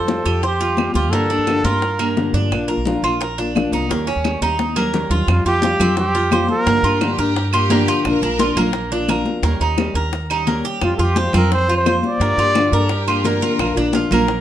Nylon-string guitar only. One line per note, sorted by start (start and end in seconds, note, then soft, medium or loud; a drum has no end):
0.07 0.25 F3 medium
0.07 0.25 G3 medium
0.07 0.24 C4 medium
0.07 0.23 F4 medium
0.24 0.42 G3 soft
0.24 0.42 C4 soft
0.24 0.42 F4 soft
0.42 muted nylon-string guitar stroke medium
0.60 0.77 G3 soft
0.60 0.77 C4 soft
0.60 0.77 F4 soft
0.77 1.11 F3 medium
0.77 1.12 G3 medium
0.77 1.12 C4 medium
0.77 1.12 F4 medium
1.11 1.29 D3 medium
1.11 1.29 F3 medium
1.11 1.29 A#3 medium
1.11 1.29 D4 medium
1.11 1.29 G4 medium
1.30 1.47 A#3 soft
1.30 1.47 D4 soft
1.30 1.47 G4 soft
1.48 1.64 D3 medium
1.48 1.64 F3 medium
1.48 1.65 A#3 medium
1.48 1.65 D4 medium
1.48 1.64 G4 medium
1.65 1.81 A#3 soft
1.65 1.81 D4 soft
1.65 1.82 G4 soft
1.82 muted nylon-string guitar stroke medium
1.99 2.16 A#3 soft
1.99 2.16 D4 soft
1.99 2.16 G4 soft
2.16 2.51 D3 medium
2.16 2.50 F3 medium
2.16 2.51 A#3 medium
2.16 2.51 D4 medium
2.16 2.52 G4 medium
2.51 2.68 F3 medium
2.51 2.69 A#3 medium
2.51 2.69 D4 medium
2.51 2.68 F4 medium
2.69 2.86 A#3 soft
2.69 2.86 D4 soft
2.69 2.86 F4 medium
2.86 3.03 F3 medium
2.86 3.03 A#3 medium
2.86 3.03 D4 medium
2.86 3.03 F4 medium
3.04 3.20 A#3 soft
3.04 3.20 D4 soft
3.04 3.20 F4 soft
3.21 muted nylon-string guitar stroke medium
3.38 3.54 A#3 soft
3.38 3.54 D4 soft
3.38 3.55 F4 soft
3.55 3.89 F3 medium
3.55 3.89 A#3 medium
3.55 3.90 D4 medium
3.55 3.90 F4 medium
3.89 4.06 D#3 medium
3.89 4.07 G3 medium
3.89 4.07 C#4 medium
3.89 4.06 G4 medium
4.07 4.24 G3 soft
4.07 4.25 C#4 soft
4.07 4.24 G4 soft
4.25 4.42 D#3 medium
4.25 4.42 G3 medium
4.25 4.41 C#4 medium
4.25 4.41 G4 medium
4.42 4.58 G3 soft
4.42 4.58 C#4 soft
4.42 4.59 G4 medium
4.59 muted nylon-string guitar stroke medium
4.76 4.93 G3 soft
4.76 4.93 C#4 soft
4.76 4.93 G4 soft
4.94 5.28 D#3 medium
4.94 5.28 G3 medium
4.94 5.28 C#4 medium
4.94 5.29 G4 medium
5.29 5.45 F3 medium
5.29 5.46 G3 medium
5.29 5.45 C4 medium
5.29 5.44 F4 medium
5.45 5.62 G3 soft
5.45 5.63 C4 soft
5.45 5.62 F4 soft
5.63 5.79 F3 medium
5.63 5.80 G3 medium
5.63 5.80 C4 medium
5.63 5.79 F4 medium
5.80 5.98 G3 soft
5.80 5.97 C4 soft
5.80 5.97 F4 medium
5.98 muted nylon-string guitar stroke medium
6.15 6.32 G3 soft
6.15 6.32 C4 soft
6.15 6.32 F4 soft
6.32 6.66 F3 medium
6.32 6.67 G3 medium
6.32 6.67 C4 medium
6.32 6.67 F4 medium
6.67 6.84 D3 medium
6.67 6.84 F3 medium
6.67 6.84 A#3 medium
6.67 6.84 D4 medium
6.67 6.83 G4 medium
6.84 7.01 A#3 soft
6.84 7.01 D4 soft
6.84 7.01 G4 medium
7.01 7.18 D3 medium
7.01 7.18 F3 medium
7.01 7.18 A#3 medium
7.01 7.19 D4 medium
7.01 7.18 G4 medium
7.19 7.35 A#3 soft
7.19 7.35 D4 medium
7.19 7.35 G4 medium
7.35 muted nylon-string guitar stroke medium
7.52 7.69 A#3 soft
7.52 7.69 D4 soft
7.52 7.69 G4 soft
7.70 8.04 D3 medium
7.70 8.03 F3 medium
7.70 8.04 A#3 medium
7.70 8.04 D4 medium
7.70 8.05 G4 medium
8.04 8.21 F3 medium
8.04 8.22 A#3 medium
8.04 8.22 D4 medium
8.04 8.21 F4 medium
8.22 8.38 A#3 soft
8.22 8.39 D4 soft
8.22 8.39 F4 soft
8.39 8.56 F3 medium
8.39 8.56 A#3 medium
8.39 8.56 D4 medium
8.39 8.56 F4 medium
8.57 8.73 A#3 soft
8.57 8.74 D4 soft
8.57 8.74 F4 soft
8.74 muted nylon-string guitar stroke medium
8.92 9.09 A#3 soft
8.92 9.09 D4 soft
8.92 9.09 F4 medium
9.10 9.43 F3 medium
9.10 9.44 A#3 medium
9.10 9.44 D4 medium
9.10 9.44 F4 medium
9.44 9.60 D#3 medium
9.44 9.61 G3 medium
9.44 9.61 C#4 medium
9.44 9.61 G4 medium
9.62 9.78 G3 soft
9.62 9.78 C#4 soft
9.62 9.78 G4 medium
9.78 9.95 D#3 medium
9.78 9.95 G3 medium
9.78 9.95 C#4 medium
9.78 9.95 G4 medium
9.96 10.13 G3 soft
9.96 10.13 C#4 soft
9.96 10.12 G4 medium
10.13 muted nylon-string guitar stroke medium
10.30 10.46 G3 soft
10.30 10.47 C#4 soft
10.30 10.47 G4 soft
10.47 10.81 D#3 medium
10.47 10.81 G3 medium
10.47 10.82 C#4 medium
10.47 10.82 G4 medium
10.82 10.98 F3 medium
10.82 10.99 G3 medium
10.82 10.99 C4 medium
10.82 10.98 F4 medium
10.99 11.16 G3 soft
10.99 11.16 C4 soft
10.99 11.16 F4 soft
11.16 11.33 F3 medium
11.16 11.33 G3 medium
11.16 11.33 C4 medium
11.16 11.32 F4 medium
11.34 11.51 G3 soft
11.34 11.51 C4 soft
11.34 11.50 F4 soft
11.51 muted nylon-string guitar stroke medium
11.68 11.84 G3 soft
11.68 11.85 C4 soft
11.68 11.85 F4 medium
11.85 12.18 F3 medium
11.85 12.20 G3 medium
11.85 12.20 C4 medium
11.85 12.20 F4 medium
12.19 12.37 D3 medium
12.19 12.37 F3 medium
12.19 12.37 A#3 medium
12.19 12.37 D4 medium
12.19 12.36 G4 medium
12.37 12.54 A#3 soft
12.37 12.54 D4 soft
12.37 12.54 G4 medium
12.54 12.71 D3 medium
12.54 12.71 F3 medium
12.54 12.72 A#3 medium
12.54 12.71 D4 medium
12.54 12.70 G4 medium
12.71 12.88 A#3 soft
12.71 12.89 D4 soft
12.71 12.88 G4 medium
13.07 13.24 A#3 soft
13.07 13.24 D4 soft
13.07 13.24 G4 soft
13.24 13.58 D3 medium
13.24 13.57 F3 medium
13.24 13.59 A#3 medium
13.24 13.59 D4 medium
13.24 13.59 G4 medium
13.59 13.76 F3 medium
13.59 13.76 A#3 medium
13.59 13.75 D4 medium
13.59 13.74 F4 medium
13.75 13.93 A#3 soft
13.75 13.93 D4 soft
13.75 13.93 F4 medium
13.93 14.10 F3 medium
13.93 14.11 A#3 medium
13.93 14.10 D4 medium
13.93 14.09 F4 medium
14.10 14.28 A#3 soft
14.10 14.28 D4 soft
14.10 14.28 F4 medium
14.29 muted nylon-string guitar stroke medium